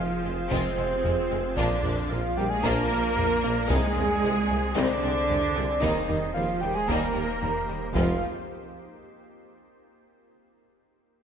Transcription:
Already playing: sub bass F1, cello section F3, synth drone C4 F4 G#4 C5, viola section F4, soft synth lead F5
0.24 double bass section F1, tuba F1, violin section G#3 C4
0.49 tuba F1, double bass section F1, cello section C3, violin section G#3 C4 F4, french horn section G#3 C4, viola section C4, soft synth lead C5, taiko
0.77 tuba F1, double bass section F1, violin section G#3 C4
1.05 tuba F1, double bass section F1, violin section G#3, taiko low
1.31 tuba F1, double bass section F1, violin section G#3 C4
1.56 sub bass A#1, tuba A#1, double bass section A#1, cello section D3, french horn section F3 D4, violin section A#3 D4 F4, synth drone A#3 D4 F4 D5, viola section D4, soft synth lead D5, taiko
1.84 tuba A#1, double bass section A#1, violin section A#3 D4, taiko low
2.09 tuba A#1, double bass section A#1, cello section F3, violin section A#3, viola section F4, soft synth lead F5
2.36 tuba A#1, double bass section A#1, cello section G3, violin section A#3 D4, viola section G4, soft synth lead G5
2.50 cello section G#3, viola section G#4, soft synth lead G#5
2.62 tuba A#1, double bass section A#1, french horn section F3 D4, cello section A#3, violin section A#3 D4 F4, viola section A#4, soft synth lead A#5, taiko
2.90 tuba A#1, double bass section A#1, violin section A#3 D4
3.16 tuba A#1, double bass section A#1, violin section A#3, taiko low
3.43 tuba A#1, double bass section A#1, violin section A#3 D4
3.68 sub bass C2, tuba C2, double bass section C2, french horn section G#3 C4, cello section G#3, synth drone C4 G#4 C5, violin section C4 D#4, viola section G#4, soft synth lead G#5, taiko
3.95 tuba C2, double bass section C2, violin section G#3 C4, taiko low
4.22 double bass section C2, tuba C2, violin section G#3 C4
4.50 tuba C2, double bass section C2, violin section G#3 C4
4.74 tuba C2, double bass section C2, cello section D3, french horn section G#3 C4, violin section C4 D#4, viola section D4, soft synth lead D5, taiko
5.02 tuba C2, double bass section C2, violin section G#3 C4
5.28 double bass section C2, tuba C2, violin section G#3 C4, taiko low
5.55 double bass section C2, tuba C2, violin section G#3 C4
5.81 sub bass D#1, tuba D#2, double bass section D#2, cello section D#3, violin section G3 A#3 D#4, french horn section G3 A#3, synth drone A#3 D#4 G4, viola section D#4, soft synth lead D#5, taiko
6.08 tuba D#2, double bass section D#2, violin section G3 A#3, taiko low
6.34 tuba D#2, double bass section D#2, cello section F3, violin section G3, viola section F4, soft synth lead F5
6.60 tuba D#2, double bass section D#2, violin section G3 A#3, cello section G3, viola section G4, soft synth lead G5
6.74 cello section G#3, viola section G#4, soft synth lead G#5
6.87 double bass section D#2, tuba D#2, french horn section G3 A#3, violin section G3 A#3 D#4, cello section A#3, viola section A#4, soft synth lead A#5, taiko
7.14 double bass section D#2, tuba D#2, violin section G3 A#3
7.41 tuba D#2, double bass section D#2, violin section G3, taiko low
7.67 tuba D#2, double bass section D#2, violin section G3 A#3
7.94 tuba F1, sub bass F1, double bass section F2, cello section F3, french horn section G#3 C4, violin section G#3 C4, viola section F4, soft synth lead F5, taiko

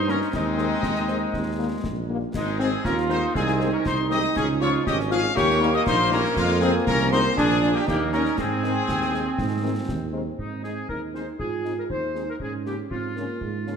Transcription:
Already playing: tuba G2, trombone section D#4, piccolo C6
0.08 french horn section D#3 A#3 C#4, woodwind section C#4, trumpet section A#4, piccolo A#5, snare
0.21 snare
0.32 tuba D#2, woodwind section G#3, trombone section C4, trumpet section D#4, piccolo D#5, concert bass drum, snare, crash
0.57 french horn section D#3 G#3 C4, snare
0.83 tuba D#2, concert bass drum, snare
0.96 snare
1.08 french horn section D#3 G#3 C4, snare
1.33 tuba D#2, concert bass drum, snare
1.58 french horn section D#3 G3 A#3
1.84 tuba A#1, concert bass drum, snare
2.09 french horn section D#3 G3 A#3
2.34 tuba G#1, woodwind section G#3, trumpet section D#4, piccolo D#5, concert bass drum, snare, crash
2.59 french horn section D#3 G#3 C4, woodwind section C4, trumpet section G#4, piccolo G#5, snare
2.84 tuba D#2, woodwind section C#4, trombone section F4, trumpet section A#4, piccolo A#5, concert bass drum, snare
2.97 snare
3.09 french horn section D#3 G#3 C4, woodwind section D#4, trumpet section C5, piccolo C6, snare
3.34 tuba C2, woodwind section C4, trombone section D#4, trumpet section G#4, piccolo G#5, concert bass drum, snare
3.48 snare
3.59 french horn section D#3 G#3 C4, snare
3.72 woodwind section C#4, trumpet section A#4, piccolo A#5
3.85 tuba C2, woodwind section D#4, trumpet section C5, piccolo C6, concert bass drum, snare
4.10 french horn section D#3 G#3 C4, woodwind section G4, trumpet section D#5, piccolo D#6, snare
4.24 snare
4.35 tuba C#2, woodwind section C#4, trumpet section G#4, piccolo G#5, concert bass drum, snare, crash
4.60 french horn section F3 C#4 F4, woodwind section F4, trumpet section C#5, piccolo C#6, snare
4.85 tuba G#1, trombone section C#4, woodwind section G4, trumpet section D#5, piccolo D#6, concert bass drum, snare
5.00 snare
5.10 french horn section F3 C#4 F4, woodwind section G#4, trumpet section F5, piccolo F6, snare
5.36 tuba D#2, trombone section A#3, woodwind section G4, trumpet section C#5, piccolo C#6, concert bass drum, snare
5.50 snare
5.61 french horn section G3 A#3 D#4, snare
5.74 woodwind section G4, trumpet section D#5, piccolo D#6
5.87 tuba A#1, woodwind section D#4, trumpet section C5, piccolo C6, concert bass drum, snare
6.11 french horn section G3 A#3 D#4, woodwind section C#4, trumpet section A#4, piccolo A#5, snare
6.24 snare
6.36 tuba F2, woodwind section G#3, trumpet section F4, piccolo F5, concert bass drum, snare, crash
6.61 french horn section F3 G#3 C4, woodwind section C4, trumpet section G#4, piccolo G#5, snare
6.87 tuba C2, woodwind section C#4, trumpet section A#4, piccolo A#5, concert bass drum, snare
7.00 snare
7.11 french horn section F3 G#3 C4, woodwind section D#4, trumpet section C5, piccolo C6, snare
7.37 tuba A#1, woodwind section D4, trombone section D4, trumpet section G#4, piccolo G#5, concert bass drum, snare
7.50 snare
7.62 french horn section F3 A#3 D4, snare
7.75 woodwind section A#3, trumpet section G4, piccolo G5
7.86 tuba D#2, woodwind section A#3, trombone section D#4, trumpet section G4, piccolo G5, concert bass drum, snare
8.12 french horn section D#3 A#3 C#4, woodwind section C#4, trumpet section A#4, piccolo A#5, snare
8.25 snare
8.37 tuba G#2, trombone section C4, woodwind section C4, trumpet section G#4, piccolo G#5, concert bass drum, snare, crash
8.63 french horn section D#3 G#3 C4, snare
8.88 tuba D#2, concert bass drum, snare
9.01 snare
9.12 french horn section D#3 G#3 C4, snare
9.38 tuba G#2, concert bass drum, snare
9.63 french horn section D#3 G#3 C4
9.88 tuba D#2, concert bass drum, snare
10.13 french horn section D#3 G#3 C4
10.38 tuba G#2, euphonium C4, woodwind section D#4, concert bass drum
10.63 french horn section G#3 C4 D#4, woodwind section G#4, trumpet section G#4, snare
10.89 tuba D#2, euphonium D#4, woodwind section A#4, concert bass drum
11.14 french horn section G#3 C4 D#4, trumpet section G#4, woodwind section C5, snare
11.39 tuba G#2, euphonium F4, woodwind section G#4, concert bass drum
11.64 french horn section G#3 C4 D#4, trumpet section G#4, snare
11.79 woodwind section A#4
11.89 tuba D#2, euphonium D#4, woodwind section C5, concert bass drum
12.15 french horn section G#3 C4 D#4, trumpet section G#4, snare
12.30 woodwind section A#4
12.39 tuba G#2, euphonium C#4, woodwind section G#4, concert bass drum
12.65 french horn section C#3 A#3 C#4, trumpet section F4, woodwind section G4, snare
12.90 tuba G#2, euphonium C4, woodwind section F4, concert bass drum
13.16 french horn section C#3 A#3 C#4, euphonium A#3, trumpet section F4, snare
13.41 tuba G#2, euphonium G#3, concert bass drum
13.66 french horn section C#3 A#3 C#4, euphonium C#4, trumpet section F4, snare

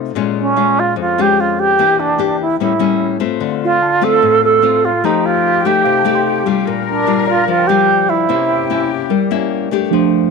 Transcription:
Already playing: nylon-string guitar C3 A3 D#4
0.15 nylon-string guitar A#2 G#3 C#4 F4
0.40 alto flute C#4
0.56 nylon-string guitar G#3 C#4 F4
0.79 alto flute F4
0.96 nylon-string guitar F2
1.00 alto flute F4
1.18 nylon-string guitar G#3 C#4 F4, alto flute G4
1.40 alto flute F4
1.59 alto flute G4
1.79 nylon-string guitar E3 A#3 D4 G4
1.98 alto flute D4, tine electric piano G5
2.19 nylon-string guitar A#3 D4 G4
2.41 alto flute E4
2.60 nylon-string guitar A2 G3 A#3 C#4, alto flute E4
2.79 nylon-string guitar G3 A#3 C#4
3.20 nylon-string guitar A3 C4 F4
3.40 nylon-string guitar D3, flute section F4
3.64 alto flute F4
3.82 tine electric piano A5
4.01 nylon-string guitar A3 C4 F4, alto flute A4
4.22 nylon-string guitar A2
4.45 alto flute A4
4.62 nylon-string guitar A3 C4 F4
4.85 alto flute F4
5.03 nylon-string guitar F3 A3 D#4 G4, alto flute D#4, flute section G4
5.26 alto flute F4
5.65 nylon-string guitar A3 D#4 G4, alto flute G4
5.85 nylon-string guitar C3, tine electric piano F5
5.99 tine electric piano A5
6.05 nylon-string guitar A3 D#4 G4
6.15 tine electric piano C6
6.46 nylon-string guitar G3 D4 F4
6.66 nylon-string guitar A#2, flute section A#4
6.88 alto flute D4
7.07 nylon-string guitar G3 D4 F4
7.28 alto flute F4, tine electric piano D5
7.44 nylon-string guitar F3, tine electric piano F5
7.49 alto flute F4
7.59 tine electric piano G5
7.67 nylon-string guitar G3 D4 F4, alto flute G4
8.09 alto flute E4
8.29 nylon-string guitar C3 A#3 C#4 E4, flute section G4
8.70 nylon-string guitar A#3 C#4 E4
9.10 nylon-string guitar G3, tine electric piano A#4
9.31 nylon-string guitar A#3 C#4 E4
9.71 nylon-string guitar A3 D4 G4
9.91 tine electric piano F3 A3 D4, nylon-string guitar F3

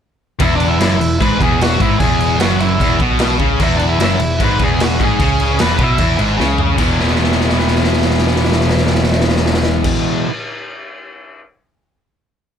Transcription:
0.39 picked electric bass E1, distorted electric guitar E2, lead electric guitar E4, kick, crash
0.45 lead electric guitar E5
0.55 lead electric guitar D4 D5
0.60 crash
0.67 lead electric guitar E4 E5
0.79 picked electric bass F#1, distorted electric guitar F#2, snare, crash
0.99 picked electric bass E1, distorted electric guitar E2, crash
1.20 picked electric bass G#1, distorted electric guitar G#2, lead electric guitar B4 B5, kick, crash
1.39 picked electric bass E1, distorted electric guitar E2, lead electric guitar G#4 G#5, kick, crash
1.61 lead electric guitar F#4 F#5, snare, crash
1.79 picked electric bass G#1, distorted electric guitar G#2, lead electric guitar E4 E5, kick, crash
1.99 picked electric bass E1, distorted electric guitar E2, lead electric guitar G#4 G#5, kick, crash
2.20 crash
2.39 picked electric bass F#1, distorted electric guitar F#2, lead electric guitar F#4 F#5, snare, crash
2.60 lead electric guitar E4 E5, crash
2.80 picked electric bass E1, distorted electric guitar E2, kick, crash
3.00 picked electric bass B1, distorted electric guitar B2, kick, crash
3.19 snare, crash
3.39 picked electric bass C#2, distorted electric guitar C#3, kick, crash
3.60 picked electric bass E1, distorted electric guitar E2, lead electric guitar E4 E5, kick, crash
3.77 lead electric guitar D4 D5, crash
3.89 lead electric guitar E4 E5
3.99 picked electric bass F#1, distorted electric guitar F#2, snare, crash
4.19 picked electric bass E1, distorted electric guitar E2, crash
4.39 picked electric bass G#1, distorted electric guitar G#2, kick, crash
4.43 lead electric guitar B4 B5
4.59 picked electric bass E1, distorted electric guitar E2, kick, crash
4.64 lead electric guitar G#4 G#5
4.80 lead electric guitar F#4, snare, crash
4.85 lead electric guitar F#5
4.99 picked electric bass G#1, distorted electric guitar G#2, lead electric guitar G#4, kick, crash
5.05 lead electric guitar G#5
5.19 picked electric bass C#2, distorted electric guitar C#3, lead electric guitar G#4, kick, crash
5.25 lead electric guitar G#5
5.40 crash
5.59 picked electric bass E1, distorted electric guitar E2, lead electric guitar B4 B5, snare, crash
5.79 picked electric bass B1, distorted electric guitar B2, kick, crash
5.83 lead electric guitar E4 E5
5.98 picked electric bass E1, distorted electric guitar E2, kick, crash
6.18 picked electric bass G#1, distorted electric guitar G#2, crash
6.37 picked electric bass C#2, distorted electric guitar C#3, snare
6.58 floor tom
6.76 picked electric bass E1, distorted electric guitar E2 B2 E3 G#3 B3, kick, crash
6.81 distorted electric guitar E4
6.99 snare
7.07 snare
7.15 snare
7.24 snare
7.32 snare
7.41 snare
7.49 snare
7.59 snare
7.67 snare
7.76 snare
7.84 snare
7.93 snare
8.02 snare
8.10 snare
8.18 snare
8.27 snare
8.36 snare
8.45 snare
8.52 snare
8.61 snare
8.70 snare
8.77 snare
8.87 snare
8.95 snare
9.04 snare
9.12 snare
9.20 snare
9.29 snare
9.36 snare
9.46 snare
9.54 snare
9.63 snare
9.84 kick, crash

